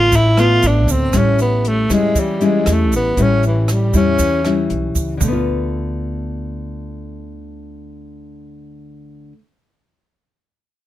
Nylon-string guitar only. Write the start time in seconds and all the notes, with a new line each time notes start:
Already playing: A3 B3 F4
0.12 A2
0.37 A3 B3 F4
1.13 A2 G3 C#4 E4
1.90 G3 C#4 E4
2.16 E3
2.41 G3 C#4 E4
3.17 A2 G3 C#4 E4
3.94 G3 C#4 E4
4.20 E3
4.45 G3 C#4 E4
5.17 D3
5.23 A3
5.28 B3
5.32 F4